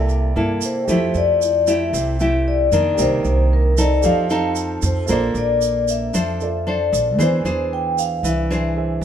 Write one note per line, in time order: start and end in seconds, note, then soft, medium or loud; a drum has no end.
0.00 0.32 C2 medium
0.00 0.86 C3 medium
0.00 0.32 A#3 medium
0.00 0.32 E4 medium
0.00 0.85 E4 soft
0.00 0.32 A4 medium
0.00 0.86 A4 soft
0.00 0.89 D5 medium
0.00 0.58 E5 medium
0.09 shaker soft
0.36 0.60 G2 medium
0.36 0.84 A#3 medium
0.36 0.84 E4 soft
0.36 0.85 A4 medium
0.61 1.18 C5 medium
0.61 shaker medium
0.85 1.12 F2 medium
0.85 1.91 F3 soft
0.85 1.41 A3 medium
0.85 2.93 G4 soft
0.85 2.94 A4 soft
0.85 shaker medium
0.89 1.41 E4 medium
0.89 1.41 G4 medium
0.89 2.95 C5 soft
0.89 2.96 E5 soft
1.14 1.89 F2 medium
1.14 1.70 D5 medium
1.14 shaker soft
1.42 shaker medium
1.67 2.15 A3 medium
1.67 2.15 E4 medium
1.67 2.16 G4 medium
1.67 2.50 E5 medium
1.67 shaker medium
1.93 2.68 C2 medium
1.93 2.96 C3 medium
1.93 shaker medium
2.20 2.68 A3 medium
2.20 2.68 E4 medium
2.20 2.69 G4 medium
2.20 shaker soft
2.48 3.01 D5 medium
2.72 3.00 F2 medium
2.72 3.73 D#3 medium
2.72 3.74 A#3 medium
2.72 3.74 D4 medium
2.72 shaker medium
2.95 4.01 C3 medium
2.95 4.00 G4 soft
2.95 4.01 A#4 soft
2.95 shaker medium
2.99 3.23 C2 medium
2.99 4.03 D#4 soft
2.99 3.54 C5 medium
2.99 4.02 D5 soft
3.25 3.99 C2 medium
3.25 shaker soft
3.53 3.76 A#4 medium
3.77 4.26 C4 medium
3.77 4.26 D#4 medium
3.77 4.26 A4 medium
3.77 4.06 D5 medium
3.77 shaker medium
4.02 4.78 F2 medium
4.02 5.06 F3 medium
4.02 5.05 G4 soft
4.02 5.06 A4 soft
4.02 5.07 C5 soft
4.02 4.53 F5 medium
4.02 shaker medium
4.08 5.08 D#5 medium
4.30 5.05 C4 medium
4.30 5.05 D#4 medium
4.30 5.05 A4 medium
4.30 shaker soft
4.56 shaker medium
4.82 5.10 F2 loud
4.82 5.38 C5 medium
4.82 shaker medium
5.06 5.33 A#1 medium
5.06 6.11 A#3 medium
5.06 6.10 D4 medium
5.06 6.36 F4 soft
5.06 6.37 A4 soft
5.06 6.10 A4 medium
5.06 6.10 C5 medium
5.06 shaker medium
5.10 6.38 C5 soft
5.10 6.39 D5 soft
5.34 6.09 A#1 medium
5.34 5.85 D5 medium
5.34 shaker soft
5.62 shaker medium
5.88 6.70 E5 medium
5.88 shaker medium
6.14 6.88 F2 medium
6.14 7.16 F3 medium
6.14 6.47 D4 medium
6.14 6.48 A4 medium
6.14 6.48 C5 medium
6.14 shaker medium
6.40 7.19 F4 soft
6.40 7.19 A4 soft
6.40 7.19 C5 soft
6.40 7.20 D5 soft
6.40 shaker soft
6.67 7.17 D4 medium
6.67 7.17 A4 soft
6.67 7.17 C5 medium
6.67 7.21 D5 medium
6.93 7.19 A#1 medium
6.93 shaker medium
7.18 7.43 E2 medium
7.18 8.21 E3 medium
7.18 7.40 D4 medium
7.18 8.73 G#4 soft
7.18 7.41 G#4 medium
7.18 7.41 C5 medium
7.18 8.74 C5 soft
7.18 7.69 C5 medium
7.18 8.75 D5 soft
7.18 shaker medium
7.44 8.19 E2 medium
7.44 8.46 D4 medium
7.44 8.46 G#4 medium
7.44 8.46 C5 medium
7.44 shaker soft
7.73 7.97 G5 medium
7.98 8.25 F5 medium
7.98 shaker medium
8.23 8.98 C2 medium
8.23 9.04 E3 medium
8.23 8.73 E5 medium
8.23 shaker medium
8.50 9.04 D4 medium
8.50 9.04 G#4 medium
8.50 9.04 C5 medium
8.50 shaker soft
8.76 9.04 G#4 soft
8.76 9.04 C5 soft
8.76 9.04 E5 soft
9.01 9.04 E2 medium